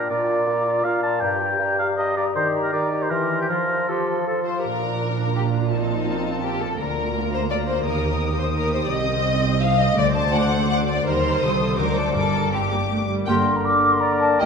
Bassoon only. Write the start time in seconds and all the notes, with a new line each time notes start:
0.10 A#2
0.47 A#2
0.84 A#2
1.21 G2
1.59 G2
1.96 G2
2.35 D#3
2.73 D#3
3.11 E3
3.50 F3
3.89 F3
4.27 F3
13.27 D3
14.41 D#3